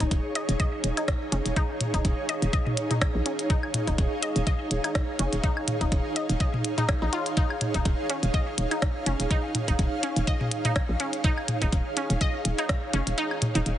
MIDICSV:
0, 0, Header, 1, 5, 480
1, 0, Start_track
1, 0, Tempo, 483871
1, 1551, Time_signature, 4, 2, 24, 8
1, 13671, End_track
2, 0, Start_track
2, 0, Title_t, "Ambient pad"
2, 0, Program_c, 0, 92
2, 0, Note_on_c, 0, 63, 92
2, 0, Note_on_c, 0, 68, 83
2, 0, Note_on_c, 0, 73, 79
2, 0, Note_on_c, 0, 77, 84
2, 13671, Note_off_c, 0, 63, 0
2, 13671, Note_off_c, 0, 68, 0
2, 13671, Note_off_c, 0, 73, 0
2, 13671, Note_off_c, 0, 77, 0
2, 13671, End_track
3, 0, Start_track
3, 0, Title_t, "Synth pluck"
3, 0, Program_c, 1, 84
3, 5, Note_on_c, 1, 63, 78
3, 34, Note_off_c, 1, 63, 0
3, 352, Note_on_c, 1, 75, 79
3, 388, Note_off_c, 1, 75, 0
3, 592, Note_on_c, 1, 75, 85
3, 613, Note_off_c, 1, 75, 0
3, 965, Note_on_c, 1, 63, 75
3, 994, Note_off_c, 1, 63, 0
3, 1313, Note_on_c, 1, 61, 78
3, 1366, Note_off_c, 1, 61, 0
3, 1552, Note_on_c, 1, 63, 107
3, 1588, Note_off_c, 1, 63, 0
3, 1925, Note_on_c, 1, 63, 80
3, 1954, Note_off_c, 1, 63, 0
3, 2272, Note_on_c, 1, 75, 76
3, 2308, Note_off_c, 1, 75, 0
3, 2512, Note_on_c, 1, 75, 84
3, 2533, Note_off_c, 1, 75, 0
3, 2885, Note_on_c, 1, 63, 78
3, 2913, Note_off_c, 1, 63, 0
3, 3232, Note_on_c, 1, 61, 77
3, 3286, Note_off_c, 1, 61, 0
3, 3472, Note_on_c, 1, 63, 105
3, 3508, Note_off_c, 1, 63, 0
3, 3845, Note_on_c, 1, 63, 78
3, 3874, Note_off_c, 1, 63, 0
3, 4192, Note_on_c, 1, 75, 77
3, 4228, Note_off_c, 1, 75, 0
3, 4432, Note_on_c, 1, 75, 84
3, 4453, Note_off_c, 1, 75, 0
3, 4804, Note_on_c, 1, 63, 76
3, 4833, Note_off_c, 1, 63, 0
3, 5152, Note_on_c, 1, 61, 73
3, 5205, Note_off_c, 1, 61, 0
3, 5392, Note_on_c, 1, 63, 104
3, 5428, Note_off_c, 1, 63, 0
3, 5764, Note_on_c, 1, 63, 80
3, 5793, Note_off_c, 1, 63, 0
3, 6112, Note_on_c, 1, 75, 76
3, 6148, Note_off_c, 1, 75, 0
3, 6352, Note_on_c, 1, 75, 82
3, 6374, Note_off_c, 1, 75, 0
3, 6724, Note_on_c, 1, 63, 103
3, 6744, Note_off_c, 1, 63, 0
3, 6964, Note_on_c, 1, 63, 102
3, 6993, Note_off_c, 1, 63, 0
3, 7071, Note_on_c, 1, 65, 100
3, 7093, Note_off_c, 1, 65, 0
3, 7311, Note_on_c, 1, 63, 103
3, 7347, Note_off_c, 1, 63, 0
3, 7684, Note_on_c, 1, 63, 80
3, 7713, Note_off_c, 1, 63, 0
3, 8032, Note_on_c, 1, 61, 81
3, 8053, Note_off_c, 1, 61, 0
3, 8273, Note_on_c, 1, 75, 85
3, 8294, Note_off_c, 1, 75, 0
3, 8646, Note_on_c, 1, 63, 74
3, 8674, Note_off_c, 1, 63, 0
3, 8992, Note_on_c, 1, 61, 74
3, 9045, Note_off_c, 1, 61, 0
3, 9231, Note_on_c, 1, 63, 104
3, 9267, Note_off_c, 1, 63, 0
3, 9604, Note_on_c, 1, 63, 77
3, 9633, Note_off_c, 1, 63, 0
3, 9952, Note_on_c, 1, 61, 81
3, 9973, Note_off_c, 1, 61, 0
3, 10192, Note_on_c, 1, 75, 85
3, 10213, Note_off_c, 1, 75, 0
3, 10566, Note_on_c, 1, 63, 76
3, 10594, Note_off_c, 1, 63, 0
3, 10912, Note_on_c, 1, 61, 73
3, 10965, Note_off_c, 1, 61, 0
3, 11152, Note_on_c, 1, 63, 108
3, 11188, Note_off_c, 1, 63, 0
3, 11526, Note_on_c, 1, 63, 78
3, 11554, Note_off_c, 1, 63, 0
3, 11873, Note_on_c, 1, 61, 78
3, 11894, Note_off_c, 1, 61, 0
3, 12113, Note_on_c, 1, 75, 85
3, 12134, Note_off_c, 1, 75, 0
3, 12486, Note_on_c, 1, 63, 76
3, 12514, Note_off_c, 1, 63, 0
3, 12833, Note_on_c, 1, 61, 77
3, 12886, Note_off_c, 1, 61, 0
3, 13073, Note_on_c, 1, 63, 104
3, 13108, Note_off_c, 1, 63, 0
3, 13446, Note_on_c, 1, 63, 80
3, 13474, Note_off_c, 1, 63, 0
3, 13671, End_track
4, 0, Start_track
4, 0, Title_t, "FM bass"
4, 0, Program_c, 2, 39
4, 5, Note_on_c, 2, 27, 101
4, 74, Note_off_c, 2, 27, 0
4, 112, Note_on_c, 2, 27, 96
4, 198, Note_off_c, 2, 27, 0
4, 483, Note_on_c, 2, 27, 98
4, 553, Note_off_c, 2, 27, 0
4, 832, Note_on_c, 2, 27, 86
4, 917, Note_off_c, 2, 27, 0
4, 1311, Note_on_c, 2, 29, 95
4, 1397, Note_off_c, 2, 29, 0
4, 1443, Note_on_c, 2, 27, 83
4, 1513, Note_off_c, 2, 27, 0
4, 1924, Note_on_c, 2, 27, 97
4, 1994, Note_off_c, 2, 27, 0
4, 2032, Note_on_c, 2, 27, 94
4, 2118, Note_off_c, 2, 27, 0
4, 2404, Note_on_c, 2, 27, 100
4, 2474, Note_off_c, 2, 27, 0
4, 3124, Note_on_c, 2, 34, 99
4, 3194, Note_off_c, 2, 34, 0
4, 3844, Note_on_c, 2, 27, 100
4, 3914, Note_off_c, 2, 27, 0
4, 3952, Note_on_c, 2, 27, 91
4, 4037, Note_off_c, 2, 27, 0
4, 4324, Note_on_c, 2, 27, 102
4, 4394, Note_off_c, 2, 27, 0
4, 4672, Note_on_c, 2, 27, 84
4, 4757, Note_off_c, 2, 27, 0
4, 5152, Note_on_c, 2, 29, 94
4, 5237, Note_off_c, 2, 29, 0
4, 5285, Note_on_c, 2, 27, 81
4, 5354, Note_off_c, 2, 27, 0
4, 5764, Note_on_c, 2, 27, 101
4, 5834, Note_off_c, 2, 27, 0
4, 5872, Note_on_c, 2, 27, 93
4, 5957, Note_off_c, 2, 27, 0
4, 6245, Note_on_c, 2, 27, 101
4, 6314, Note_off_c, 2, 27, 0
4, 6964, Note_on_c, 2, 34, 99
4, 7034, Note_off_c, 2, 34, 0
4, 7685, Note_on_c, 2, 27, 97
4, 7754, Note_off_c, 2, 27, 0
4, 7792, Note_on_c, 2, 27, 92
4, 7878, Note_off_c, 2, 27, 0
4, 8164, Note_on_c, 2, 27, 99
4, 8234, Note_off_c, 2, 27, 0
4, 8512, Note_on_c, 2, 27, 86
4, 8597, Note_off_c, 2, 27, 0
4, 8992, Note_on_c, 2, 29, 93
4, 9077, Note_off_c, 2, 29, 0
4, 9124, Note_on_c, 2, 27, 81
4, 9193, Note_off_c, 2, 27, 0
4, 9604, Note_on_c, 2, 27, 100
4, 9674, Note_off_c, 2, 27, 0
4, 9712, Note_on_c, 2, 27, 90
4, 9798, Note_off_c, 2, 27, 0
4, 10084, Note_on_c, 2, 27, 105
4, 10154, Note_off_c, 2, 27, 0
4, 10804, Note_on_c, 2, 34, 97
4, 10874, Note_off_c, 2, 34, 0
4, 11525, Note_on_c, 2, 27, 101
4, 11594, Note_off_c, 2, 27, 0
4, 11633, Note_on_c, 2, 27, 92
4, 11718, Note_off_c, 2, 27, 0
4, 12004, Note_on_c, 2, 27, 100
4, 12074, Note_off_c, 2, 27, 0
4, 12353, Note_on_c, 2, 27, 87
4, 12438, Note_off_c, 2, 27, 0
4, 12832, Note_on_c, 2, 29, 94
4, 12917, Note_off_c, 2, 29, 0
4, 12965, Note_on_c, 2, 27, 82
4, 13034, Note_off_c, 2, 27, 0
4, 13444, Note_on_c, 2, 27, 101
4, 13514, Note_off_c, 2, 27, 0
4, 13553, Note_on_c, 2, 27, 94
4, 13638, Note_off_c, 2, 27, 0
4, 13671, End_track
5, 0, Start_track
5, 0, Title_t, "Drums"
5, 4, Note_on_c, 9, 42, 57
5, 5, Note_on_c, 9, 36, 63
5, 103, Note_off_c, 9, 42, 0
5, 104, Note_off_c, 9, 36, 0
5, 112, Note_on_c, 9, 36, 115
5, 112, Note_on_c, 9, 42, 42
5, 211, Note_off_c, 9, 36, 0
5, 211, Note_off_c, 9, 42, 0
5, 351, Note_on_c, 9, 42, 95
5, 450, Note_off_c, 9, 42, 0
5, 484, Note_on_c, 9, 42, 53
5, 583, Note_off_c, 9, 42, 0
5, 592, Note_on_c, 9, 36, 117
5, 592, Note_on_c, 9, 42, 43
5, 691, Note_off_c, 9, 36, 0
5, 691, Note_off_c, 9, 42, 0
5, 832, Note_on_c, 9, 42, 93
5, 931, Note_off_c, 9, 42, 0
5, 965, Note_on_c, 9, 42, 54
5, 966, Note_on_c, 9, 75, 56
5, 1064, Note_off_c, 9, 42, 0
5, 1065, Note_off_c, 9, 75, 0
5, 1072, Note_on_c, 9, 36, 118
5, 1073, Note_on_c, 9, 37, 118
5, 1073, Note_on_c, 9, 42, 45
5, 1171, Note_off_c, 9, 36, 0
5, 1172, Note_off_c, 9, 37, 0
5, 1172, Note_off_c, 9, 42, 0
5, 1312, Note_on_c, 9, 42, 92
5, 1411, Note_off_c, 9, 42, 0
5, 1444, Note_on_c, 9, 42, 56
5, 1544, Note_off_c, 9, 42, 0
5, 1552, Note_on_c, 9, 36, 127
5, 1552, Note_on_c, 9, 42, 42
5, 1651, Note_off_c, 9, 36, 0
5, 1651, Note_off_c, 9, 42, 0
5, 1791, Note_on_c, 9, 42, 98
5, 1792, Note_on_c, 9, 45, 83
5, 1891, Note_off_c, 9, 42, 0
5, 1891, Note_off_c, 9, 45, 0
5, 1924, Note_on_c, 9, 36, 68
5, 1924, Note_on_c, 9, 42, 56
5, 2023, Note_off_c, 9, 42, 0
5, 2024, Note_off_c, 9, 36, 0
5, 2031, Note_on_c, 9, 42, 42
5, 2032, Note_on_c, 9, 36, 120
5, 2131, Note_off_c, 9, 36, 0
5, 2131, Note_off_c, 9, 42, 0
5, 2271, Note_on_c, 9, 42, 97
5, 2370, Note_off_c, 9, 42, 0
5, 2404, Note_on_c, 9, 42, 53
5, 2503, Note_off_c, 9, 42, 0
5, 2512, Note_on_c, 9, 36, 124
5, 2512, Note_on_c, 9, 42, 42
5, 2611, Note_off_c, 9, 36, 0
5, 2611, Note_off_c, 9, 42, 0
5, 2643, Note_on_c, 9, 45, 96
5, 2743, Note_off_c, 9, 45, 0
5, 2751, Note_on_c, 9, 42, 98
5, 2850, Note_off_c, 9, 42, 0
5, 2884, Note_on_c, 9, 42, 54
5, 2884, Note_on_c, 9, 45, 85
5, 2983, Note_off_c, 9, 42, 0
5, 2983, Note_off_c, 9, 45, 0
5, 2991, Note_on_c, 9, 37, 112
5, 2991, Note_on_c, 9, 42, 43
5, 2991, Note_on_c, 9, 75, 81
5, 2992, Note_on_c, 9, 36, 125
5, 3090, Note_off_c, 9, 37, 0
5, 3090, Note_off_c, 9, 42, 0
5, 3090, Note_off_c, 9, 75, 0
5, 3091, Note_off_c, 9, 36, 0
5, 3232, Note_on_c, 9, 42, 97
5, 3331, Note_off_c, 9, 42, 0
5, 3364, Note_on_c, 9, 42, 55
5, 3464, Note_off_c, 9, 42, 0
5, 3472, Note_on_c, 9, 36, 127
5, 3472, Note_on_c, 9, 42, 40
5, 3571, Note_off_c, 9, 36, 0
5, 3571, Note_off_c, 9, 42, 0
5, 3603, Note_on_c, 9, 75, 54
5, 3702, Note_off_c, 9, 75, 0
5, 3711, Note_on_c, 9, 42, 101
5, 3711, Note_on_c, 9, 45, 81
5, 3810, Note_off_c, 9, 45, 0
5, 3811, Note_off_c, 9, 42, 0
5, 3844, Note_on_c, 9, 36, 66
5, 3844, Note_on_c, 9, 42, 54
5, 3943, Note_off_c, 9, 36, 0
5, 3943, Note_off_c, 9, 42, 0
5, 3952, Note_on_c, 9, 36, 122
5, 3952, Note_on_c, 9, 42, 40
5, 4051, Note_off_c, 9, 36, 0
5, 4051, Note_off_c, 9, 42, 0
5, 4191, Note_on_c, 9, 42, 99
5, 4291, Note_off_c, 9, 42, 0
5, 4324, Note_on_c, 9, 42, 51
5, 4423, Note_off_c, 9, 42, 0
5, 4432, Note_on_c, 9, 36, 127
5, 4432, Note_on_c, 9, 42, 41
5, 4531, Note_off_c, 9, 36, 0
5, 4531, Note_off_c, 9, 42, 0
5, 4671, Note_on_c, 9, 42, 98
5, 4770, Note_off_c, 9, 42, 0
5, 4803, Note_on_c, 9, 75, 63
5, 4804, Note_on_c, 9, 42, 51
5, 4902, Note_off_c, 9, 75, 0
5, 4903, Note_off_c, 9, 42, 0
5, 4911, Note_on_c, 9, 37, 115
5, 4911, Note_on_c, 9, 42, 43
5, 4912, Note_on_c, 9, 36, 122
5, 5010, Note_off_c, 9, 37, 0
5, 5010, Note_off_c, 9, 42, 0
5, 5011, Note_off_c, 9, 36, 0
5, 5151, Note_on_c, 9, 42, 95
5, 5250, Note_off_c, 9, 42, 0
5, 5284, Note_on_c, 9, 42, 54
5, 5383, Note_off_c, 9, 42, 0
5, 5392, Note_on_c, 9, 36, 127
5, 5392, Note_on_c, 9, 42, 40
5, 5491, Note_off_c, 9, 42, 0
5, 5492, Note_off_c, 9, 36, 0
5, 5524, Note_on_c, 9, 75, 54
5, 5623, Note_off_c, 9, 75, 0
5, 5631, Note_on_c, 9, 42, 98
5, 5632, Note_on_c, 9, 45, 80
5, 5731, Note_off_c, 9, 42, 0
5, 5731, Note_off_c, 9, 45, 0
5, 5764, Note_on_c, 9, 42, 53
5, 5765, Note_on_c, 9, 36, 67
5, 5864, Note_off_c, 9, 36, 0
5, 5864, Note_off_c, 9, 42, 0
5, 5872, Note_on_c, 9, 36, 124
5, 5872, Note_on_c, 9, 42, 39
5, 5971, Note_off_c, 9, 36, 0
5, 5971, Note_off_c, 9, 42, 0
5, 6111, Note_on_c, 9, 42, 102
5, 6210, Note_off_c, 9, 42, 0
5, 6244, Note_on_c, 9, 42, 50
5, 6344, Note_off_c, 9, 42, 0
5, 6351, Note_on_c, 9, 42, 41
5, 6352, Note_on_c, 9, 36, 122
5, 6450, Note_off_c, 9, 42, 0
5, 6451, Note_off_c, 9, 36, 0
5, 6485, Note_on_c, 9, 45, 92
5, 6584, Note_off_c, 9, 45, 0
5, 6592, Note_on_c, 9, 42, 97
5, 6691, Note_off_c, 9, 42, 0
5, 6724, Note_on_c, 9, 42, 48
5, 6724, Note_on_c, 9, 45, 83
5, 6823, Note_off_c, 9, 42, 0
5, 6823, Note_off_c, 9, 45, 0
5, 6831, Note_on_c, 9, 37, 110
5, 6831, Note_on_c, 9, 42, 41
5, 6831, Note_on_c, 9, 75, 84
5, 6832, Note_on_c, 9, 36, 121
5, 6930, Note_off_c, 9, 37, 0
5, 6930, Note_off_c, 9, 42, 0
5, 6930, Note_off_c, 9, 75, 0
5, 6931, Note_off_c, 9, 36, 0
5, 7070, Note_on_c, 9, 42, 98
5, 7170, Note_off_c, 9, 42, 0
5, 7203, Note_on_c, 9, 42, 53
5, 7303, Note_off_c, 9, 42, 0
5, 7310, Note_on_c, 9, 42, 41
5, 7312, Note_on_c, 9, 36, 125
5, 7409, Note_off_c, 9, 42, 0
5, 7412, Note_off_c, 9, 36, 0
5, 7444, Note_on_c, 9, 75, 53
5, 7543, Note_off_c, 9, 75, 0
5, 7550, Note_on_c, 9, 42, 94
5, 7552, Note_on_c, 9, 45, 75
5, 7649, Note_off_c, 9, 42, 0
5, 7651, Note_off_c, 9, 45, 0
5, 7682, Note_on_c, 9, 42, 52
5, 7685, Note_on_c, 9, 36, 64
5, 7781, Note_off_c, 9, 42, 0
5, 7784, Note_off_c, 9, 36, 0
5, 7791, Note_on_c, 9, 42, 39
5, 7792, Note_on_c, 9, 36, 124
5, 7890, Note_off_c, 9, 42, 0
5, 7891, Note_off_c, 9, 36, 0
5, 8031, Note_on_c, 9, 42, 95
5, 8130, Note_off_c, 9, 42, 0
5, 8164, Note_on_c, 9, 42, 50
5, 8263, Note_off_c, 9, 42, 0
5, 8272, Note_on_c, 9, 36, 122
5, 8272, Note_on_c, 9, 42, 42
5, 8371, Note_off_c, 9, 36, 0
5, 8371, Note_off_c, 9, 42, 0
5, 8511, Note_on_c, 9, 42, 94
5, 8610, Note_off_c, 9, 42, 0
5, 8644, Note_on_c, 9, 42, 51
5, 8644, Note_on_c, 9, 75, 57
5, 8743, Note_off_c, 9, 42, 0
5, 8743, Note_off_c, 9, 75, 0
5, 8751, Note_on_c, 9, 37, 105
5, 8751, Note_on_c, 9, 42, 43
5, 8752, Note_on_c, 9, 36, 120
5, 8850, Note_off_c, 9, 37, 0
5, 8850, Note_off_c, 9, 42, 0
5, 8851, Note_off_c, 9, 36, 0
5, 8992, Note_on_c, 9, 42, 97
5, 9091, Note_off_c, 9, 42, 0
5, 9124, Note_on_c, 9, 42, 53
5, 9223, Note_off_c, 9, 42, 0
5, 9232, Note_on_c, 9, 36, 125
5, 9232, Note_on_c, 9, 42, 42
5, 9331, Note_off_c, 9, 36, 0
5, 9331, Note_off_c, 9, 42, 0
5, 9471, Note_on_c, 9, 45, 76
5, 9472, Note_on_c, 9, 42, 89
5, 9570, Note_off_c, 9, 45, 0
5, 9571, Note_off_c, 9, 42, 0
5, 9604, Note_on_c, 9, 36, 60
5, 9604, Note_on_c, 9, 42, 53
5, 9703, Note_off_c, 9, 42, 0
5, 9704, Note_off_c, 9, 36, 0
5, 9711, Note_on_c, 9, 42, 41
5, 9712, Note_on_c, 9, 36, 115
5, 9810, Note_off_c, 9, 42, 0
5, 9811, Note_off_c, 9, 36, 0
5, 9950, Note_on_c, 9, 42, 92
5, 10049, Note_off_c, 9, 42, 0
5, 10083, Note_on_c, 9, 42, 51
5, 10182, Note_off_c, 9, 42, 0
5, 10191, Note_on_c, 9, 42, 41
5, 10192, Note_on_c, 9, 36, 119
5, 10290, Note_off_c, 9, 42, 0
5, 10291, Note_off_c, 9, 36, 0
5, 10324, Note_on_c, 9, 45, 87
5, 10423, Note_off_c, 9, 45, 0
5, 10431, Note_on_c, 9, 42, 89
5, 10530, Note_off_c, 9, 42, 0
5, 10563, Note_on_c, 9, 45, 81
5, 10564, Note_on_c, 9, 42, 54
5, 10662, Note_off_c, 9, 45, 0
5, 10663, Note_off_c, 9, 42, 0
5, 10671, Note_on_c, 9, 37, 107
5, 10671, Note_on_c, 9, 42, 45
5, 10672, Note_on_c, 9, 36, 111
5, 10672, Note_on_c, 9, 75, 77
5, 10771, Note_off_c, 9, 36, 0
5, 10771, Note_off_c, 9, 37, 0
5, 10771, Note_off_c, 9, 42, 0
5, 10771, Note_off_c, 9, 75, 0
5, 10910, Note_on_c, 9, 42, 90
5, 11010, Note_off_c, 9, 42, 0
5, 11042, Note_on_c, 9, 42, 55
5, 11141, Note_off_c, 9, 42, 0
5, 11151, Note_on_c, 9, 42, 44
5, 11152, Note_on_c, 9, 36, 122
5, 11250, Note_off_c, 9, 42, 0
5, 11252, Note_off_c, 9, 36, 0
5, 11284, Note_on_c, 9, 75, 51
5, 11383, Note_off_c, 9, 75, 0
5, 11391, Note_on_c, 9, 42, 90
5, 11392, Note_on_c, 9, 45, 77
5, 11490, Note_off_c, 9, 42, 0
5, 11491, Note_off_c, 9, 45, 0
5, 11524, Note_on_c, 9, 42, 58
5, 11525, Note_on_c, 9, 36, 61
5, 11623, Note_off_c, 9, 42, 0
5, 11624, Note_off_c, 9, 36, 0
5, 11631, Note_on_c, 9, 42, 43
5, 11632, Note_on_c, 9, 36, 113
5, 11730, Note_off_c, 9, 42, 0
5, 11732, Note_off_c, 9, 36, 0
5, 11871, Note_on_c, 9, 42, 90
5, 11971, Note_off_c, 9, 42, 0
5, 12004, Note_on_c, 9, 42, 55
5, 12103, Note_off_c, 9, 42, 0
5, 12111, Note_on_c, 9, 42, 44
5, 12113, Note_on_c, 9, 36, 113
5, 12211, Note_off_c, 9, 42, 0
5, 12212, Note_off_c, 9, 36, 0
5, 12351, Note_on_c, 9, 42, 90
5, 12450, Note_off_c, 9, 42, 0
5, 12485, Note_on_c, 9, 42, 53
5, 12486, Note_on_c, 9, 75, 55
5, 12584, Note_off_c, 9, 42, 0
5, 12585, Note_off_c, 9, 75, 0
5, 12591, Note_on_c, 9, 37, 110
5, 12591, Note_on_c, 9, 42, 45
5, 12593, Note_on_c, 9, 36, 111
5, 12690, Note_off_c, 9, 37, 0
5, 12690, Note_off_c, 9, 42, 0
5, 12692, Note_off_c, 9, 36, 0
5, 12831, Note_on_c, 9, 42, 92
5, 12931, Note_off_c, 9, 42, 0
5, 12965, Note_on_c, 9, 42, 59
5, 13065, Note_off_c, 9, 42, 0
5, 13072, Note_on_c, 9, 42, 46
5, 13171, Note_off_c, 9, 42, 0
5, 13205, Note_on_c, 9, 75, 52
5, 13305, Note_off_c, 9, 75, 0
5, 13311, Note_on_c, 9, 42, 93
5, 13313, Note_on_c, 9, 45, 83
5, 13410, Note_off_c, 9, 42, 0
5, 13412, Note_off_c, 9, 45, 0
5, 13444, Note_on_c, 9, 42, 58
5, 13543, Note_off_c, 9, 42, 0
5, 13552, Note_on_c, 9, 42, 43
5, 13651, Note_off_c, 9, 42, 0
5, 13671, End_track
0, 0, End_of_file